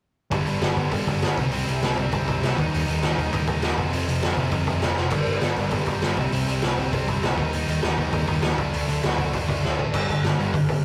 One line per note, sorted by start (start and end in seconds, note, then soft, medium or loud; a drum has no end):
0.31 0.41 G1 medium
0.31 0.47 G2 medium
0.31 0.47 D3 medium
0.31 0.47 G3 medium
0.31 0.46 B3 medium
0.31 0.45 D4 medium
0.31 kick loud
0.31 open hi-hat medium
0.46 0.55 G1 medium
0.46 0.60 G2 medium
0.46 0.61 D3 medium
0.46 0.62 G3 medium
0.46 0.62 B3 medium
0.46 0.63 D4 medium
0.46 open hi-hat medium
0.61 0.71 G1 medium
0.61 0.78 G2 medium
0.61 0.78 D3 medium
0.61 0.78 G3 medium
0.61 0.76 B3 medium
0.61 0.76 D4 medium
0.61 snare loud
0.61 open hi-hat medium
0.77 0.86 G1 medium
0.77 0.91 G2 medium
0.77 0.91 D3 medium
0.77 0.92 G3 medium
0.77 0.92 B3 medium
0.77 0.93 D4 medium
0.77 kick medium
0.77 open hi-hat soft
0.91 1.01 G1 medium
0.91 1.08 G2 medium
0.91 1.08 D3 medium
0.91 1.09 G3 loud
0.91 1.07 B3 medium
0.91 1.06 D4 medium
0.91 kick medium
0.91 open hi-hat medium
1.07 1.16 G1 medium
1.07 1.20 G2 medium
1.07 1.20 D3 medium
1.07 1.22 G3 medium
1.07 1.21 B3 medium
1.07 1.22 D4 medium
1.07 kick medium
1.07 open hi-hat medium
1.21 1.32 G1 medium
1.21 1.36 G2 medium
1.21 1.36 D3 medium
1.21 1.37 G3 medium
1.21 1.36 B3 medium
1.21 1.37 D4 medium
1.21 snare loud
1.21 open hi-hat medium
1.37 1.47 C2 medium
1.37 1.52 C3 medium
1.37 1.53 G3 medium
1.37 1.51 C4 medium
1.37 1.50 E4 loud
1.37 kick loud
1.37 open hi-hat medium
1.51 1.62 C2 medium
1.51 1.64 C3 medium
1.51 1.66 G3 medium
1.51 1.66 C4 medium
1.51 1.67 E4 medium
1.51 open hi-hat medium
1.66 1.77 C2 medium
1.66 1.83 C3 medium
1.66 1.83 G3 medium
1.66 1.82 C4 medium
1.66 1.81 E4 medium
1.66 open hi-hat soft
1.82 1.92 C2 medium
1.82 1.96 C3 medium
1.82 1.97 G3 medium
1.82 1.98 C4 medium
1.82 1.99 E4 medium
1.82 snare loud
1.82 open hi-hat medium
1.97 2.07 C2 medium
1.97 2.12 C3 medium
1.97 2.12 G3 medium
1.97 2.12 C4 medium
1.97 2.11 E4 medium
1.97 kick medium
1.97 open hi-hat soft
2.12 2.22 C2 medium
2.12 2.24 C3 medium
2.12 2.25 G3 medium
2.12 2.26 C4 medium
2.12 2.26 E4 medium
2.12 kick medium
2.12 open hi-hat medium
2.26 2.37 C2 medium
2.26 2.42 C3 medium
2.26 2.41 G3 medium
2.26 2.41 C4 medium
2.26 2.40 E4 medium
2.26 kick medium
2.26 open hi-hat soft
2.41 2.52 C2 medium
2.41 2.55 C3 medium
2.41 2.55 G3 medium
2.41 2.56 C4 medium
2.41 2.56 E4 medium
2.41 snare loud
2.41 open hi-hat medium
2.56 2.67 D#2 medium
2.56 2.72 D#3 medium
2.56 2.72 G3 medium
2.56 2.71 A#3 medium
2.56 2.71 D#4 loud
2.56 kick medium
2.56 open hi-hat soft
2.72 2.82 D#2 medium
2.72 2.85 D#3 medium
2.72 2.86 G3 medium
2.72 2.86 A#3 medium
2.72 2.87 D#4 loud
2.72 open hi-hat medium
2.86 2.98 D#2 medium
2.86 3.03 D#3 medium
2.86 3.03 G3 medium
2.86 3.02 A#3 medium
2.86 3.01 D#4 medium
2.86 open hi-hat soft
3.02 3.11 D#2 medium
3.02 3.16 D#3 medium
3.02 3.17 G3 medium
3.02 3.17 A#3 medium
3.02 3.18 D#4 medium
3.02 snare medium
3.02 open hi-hat medium
3.17 3.27 D#2 medium
3.17 3.33 D#3 medium
3.17 3.32 G3 medium
3.17 3.32 A#3 medium
3.17 3.31 D#4 medium
3.17 kick medium
3.17 open hi-hat medium
3.32 3.42 D#2 medium
3.32 3.46 D#3 medium
3.32 3.47 G3 medium
3.32 3.47 A#3 medium
3.32 3.48 D#4 loud
3.32 kick medium
3.32 open hi-hat medium
3.47 3.57 D#2 medium
3.47 3.63 D#3 medium
3.47 3.62 G3 medium
3.47 3.61 A#3 medium
3.47 3.61 D#4 medium
3.47 kick medium
3.47 open hi-hat medium
3.61 3.71 D#2 medium
3.61 3.77 D#3 medium
3.61 3.77 G3 medium
3.61 3.77 A#3 medium
3.61 3.76 D#4 medium
3.61 snare loud
3.61 open hi-hat medium
3.77 3.87 F1 medium
3.77 3.93 F2 medium
3.77 3.93 C3 medium
3.77 3.92 F3 medium
3.77 3.91 A3 medium
3.77 3.91 C4 medium
3.77 kick medium
3.77 open hi-hat medium
3.92 4.02 F1 medium
3.92 4.05 F2 medium
3.92 4.06 C3 medium
3.92 4.06 F3 medium
3.92 4.07 A3 medium
3.92 4.08 C4 medium
3.92 open hi-hat medium
4.07 4.17 F1 medium
4.07 4.23 F2 medium
4.07 4.23 C3 medium
4.07 4.22 F3 medium
4.07 4.21 A3 medium
4.07 4.21 C4 medium
4.07 open hi-hat medium
4.22 4.32 F1 medium
4.22 4.35 F2 medium
4.22 4.35 C3 medium
4.22 4.36 F3 medium
4.22 4.37 A3 medium
4.22 4.37 C4 medium
4.22 snare loud
4.22 open hi-hat medium
4.36 4.46 F1 medium
4.36 4.52 F2 medium
4.36 4.51 C3 medium
4.36 4.51 F3 medium
4.36 4.50 A3 medium
4.36 4.49 C4 medium
4.36 kick medium
4.36 open hi-hat soft
4.51 4.61 F1 medium
4.51 4.65 F2 medium
4.51 4.66 C3 medium
4.51 4.66 F3 medium
4.51 4.66 A3 medium
4.51 4.67 C4 medium
4.51 kick medium
4.51 open hi-hat medium
4.66 4.76 F1 medium
4.66 4.82 F2 medium
4.66 4.81 C3 medium
4.66 4.80 F3 medium
4.66 4.80 A3 medium
4.66 4.79 C4 medium
4.66 kick medium
4.66 open hi-hat medium
4.81 4.91 F1 medium
4.81 4.94 F2 medium
4.81 4.96 C3 medium
4.81 4.96 F3 medium
4.81 4.97 A3 medium
4.81 4.97 C4 medium
4.81 snare loud
4.81 open hi-hat medium
4.96 5.07 F1 medium
4.96 5.10 F2 medium
4.96 5.11 C3 medium
4.96 5.12 F3 medium
4.96 5.12 A3 medium
4.96 5.12 C4 medium
4.96 snare medium
5.10 5.21 G1 medium
5.10 5.27 G2 medium
5.10 5.26 D3 medium
5.10 5.27 G3 medium
5.10 5.25 B3 medium
5.10 5.25 D4 medium
5.10 kick loud
5.10 open hi-hat medium
5.10 crash medium
5.26 5.36 G1 medium
5.26 5.39 G2 medium
5.26 5.40 D3 medium
5.26 5.41 G3 medium
5.26 5.41 B3 medium
5.26 5.42 D4 medium
5.26 open hi-hat soft
5.41 5.52 G1 medium
5.41 5.57 G2 medium
5.41 5.57 D3 medium
5.41 5.57 G3 medium
5.41 5.56 B3 medium
5.41 5.55 D4 medium
5.41 snare loud
5.41 open hi-hat medium
5.56 5.67 G1 medium
5.56 5.69 G2 medium
5.56 5.70 D3 medium
5.56 5.71 G3 medium
5.56 5.71 B3 medium
5.56 5.72 D4 medium
5.56 kick medium
5.56 open hi-hat medium
5.71 5.81 G1 medium
5.71 5.87 G2 medium
5.71 5.86 D3 medium
5.71 5.87 G3 medium
5.71 5.85 B3 medium
5.71 5.84 D4 loud
5.71 kick medium
5.71 open hi-hat medium
5.85 5.96 G1 medium
5.85 6.00 G2 medium
5.85 6.01 D3 medium
5.85 6.02 G3 medium
5.85 6.02 B3 medium
5.85 6.02 D4 medium
5.85 kick medium
5.85 open hi-hat medium
6.01 6.12 G1 medium
6.01 6.16 G2 medium
6.01 6.16 D3 medium
6.01 6.17 G3 medium
6.01 6.17 B3 medium
6.01 6.17 D4 medium
6.01 snare loud
6.01 open hi-hat medium
6.16 6.26 C2 medium
6.16 6.33 C3 medium
6.16 6.33 G3 loud
6.16 6.31 C4 loud
6.16 6.31 E4 medium
6.16 kick medium
6.16 open hi-hat soft
6.32 6.42 C2 medium
6.32 6.46 C3 medium
6.32 6.47 G3 medium
6.32 6.47 C4 medium
6.32 6.47 E4 medium
6.32 open hi-hat medium
6.47 6.57 C2 medium
6.47 6.63 C3 medium
6.47 6.62 G3 medium
6.47 6.62 C4 medium
6.47 6.60 E4 medium
6.47 open hi-hat medium
6.62 6.72 C2 medium
6.62 6.76 C3 medium
6.62 6.77 G3 medium
6.62 6.77 C4 medium
6.62 6.78 E4 medium
6.62 snare loud
6.62 open hi-hat medium
6.77 6.87 C2 medium
6.77 6.93 C3 medium
6.77 6.92 G3 medium
6.77 6.92 C4 medium
6.77 6.91 E4 medium
6.77 kick medium
6.77 open hi-hat medium
6.92 7.02 C2 medium
6.92 7.06 C3 medium
6.92 7.07 G3 medium
6.92 7.07 C4 medium
6.92 7.08 E4 loud
6.92 kick medium
6.92 open hi-hat medium
7.07 7.17 C2 medium
7.07 7.23 C3 medium
7.07 7.23 G3 medium
7.07 7.22 C4 medium
7.07 7.21 E4 medium
7.07 kick medium
7.07 open hi-hat medium
7.22 7.37 C2 medium
7.22 7.37 C3 medium
7.22 7.37 G3 medium
7.22 7.37 C4 medium
7.22 7.36 E4 medium
7.22 snare loud
7.22 open hi-hat medium
7.37 7.47 D#2 medium
7.37 7.54 D#3 medium
7.37 7.53 G3 medium
7.37 7.52 A#3 medium
7.37 7.52 D#4 medium
7.37 kick medium
7.37 open hi-hat soft
7.52 7.61 D#2 medium
7.52 7.67 D#3 medium
7.52 7.67 G3 medium
7.52 7.68 A#3 medium
7.52 7.68 D#4 loud
7.52 open hi-hat medium
7.67 7.76 D#2 medium
7.67 7.83 D#3 medium
7.67 7.83 G3 medium
7.67 7.82 A#3 medium
7.67 7.81 D#4 medium
7.67 open hi-hat soft
7.82 7.92 D#2 medium
7.82 7.97 D#3 medium
7.82 7.97 G3 medium
7.82 7.97 A#3 medium
7.82 7.99 D#4 medium
7.82 snare loud
7.82 open hi-hat medium
7.98 8.07 D#2 medium
7.98 8.13 D#3 medium
7.98 8.12 G3 medium
7.98 8.12 A#3 loud
7.98 8.11 D#4 medium
7.98 kick medium
7.98 open hi-hat soft
8.12 8.22 D#2 medium
8.12 8.26 D#3 medium
8.12 8.27 G3 medium
8.12 8.28 A#3 medium
8.12 8.27 D#4 loud
8.12 kick loud
8.12 open hi-hat medium
8.27 8.37 D#2 medium
8.27 8.42 D#3 medium
8.27 8.42 G3 medium
8.27 8.42 A#3 medium
8.27 8.40 D#4 medium
8.27 kick medium
8.27 open hi-hat medium
8.41 8.52 D#2 medium
8.41 8.56 D#3 medium
8.41 8.57 G3 medium
8.41 8.57 A#3 medium
8.41 8.56 D#4 medium
8.41 snare loud
8.41 open hi-hat medium
8.57 8.67 D2 medium
8.57 8.73 D3 medium
8.57 8.72 F#3 loud
8.57 8.71 A3 medium
8.57 8.71 D4 medium
8.57 kick medium
8.57 open hi-hat soft
8.72 8.82 D2 medium
8.72 8.86 D3 medium
8.72 8.86 F#3 medium
8.72 8.87 A3 medium
8.72 8.87 D4 medium
8.72 open hi-hat medium
8.87 8.98 D2 medium
8.87 9.04 D3 medium
8.87 9.04 F#3 medium
8.87 9.03 A3 medium
8.87 9.02 D4 medium
8.87 open hi-hat medium
9.03 9.12 D2 medium
9.03 9.17 D3 medium
9.03 9.18 F#3 medium
9.03 9.18 A3 medium
9.03 9.19 D4 medium
9.03 snare loud
9.03 open hi-hat medium
9.18 9.27 D2 medium
9.18 9.34 D3 medium
9.18 9.33 F#3 medium
9.18 9.32 A3 medium
9.18 9.32 D4 medium
9.18 kick medium
9.18 open hi-hat medium
9.33 9.43 D2 medium
9.33 9.48 D3 medium
9.33 9.48 F#3 medium
9.33 9.49 A3 medium
9.33 9.49 D4 medium
9.33 kick medium
9.33 open hi-hat medium
9.49 9.58 D2 medium
9.49 9.64 D3 medium
9.49 9.64 F#3 medium
9.49 9.63 A3 medium
9.49 9.62 D4 medium
9.49 kick medium
9.49 open hi-hat medium
9.63 9.72 D2 medium
9.63 9.76 D3 medium
9.63 9.77 F#3 medium
9.63 9.78 A3 medium
9.63 9.78 D4 medium
9.63 snare medium
9.78 9.93 A1 medium
9.78 9.92 D3 medium
9.78 9.92 F#3 medium
9.78 9.92 A3 medium
9.78 9.93 D4 medium
9.78 floor tom medium
9.93 10.04 G1 medium
9.93 10.07 G2 medium
9.93 10.08 D3 medium
9.93 10.08 G3 medium
9.93 kick loud
9.93 crash loud
10.09 10.20 G1 medium
10.09 10.22 G2 medium
10.09 10.23 D3 medium
10.09 kick medium
10.09 open hi-hat medium
10.23 10.33 G1 medium
10.23 10.37 G2 medium
10.23 10.37 D3 medium
10.23 snare loud
10.23 open hi-hat medium
10.38 10.49 G1 medium
10.38 10.52 G2 medium
10.38 10.52 D3 loud
10.38 10.53 G3 medium
10.38 open hi-hat soft
10.53 10.64 G1 medium
10.53 10.67 G2 medium
10.53 10.67 D3 medium
10.53 kick loud
10.53 open hi-hat medium
10.68 10.79 G1 medium
10.68 10.82 G2 medium
10.68 10.82 D3 medium
10.68 kick medium
10.68 open hi-hat medium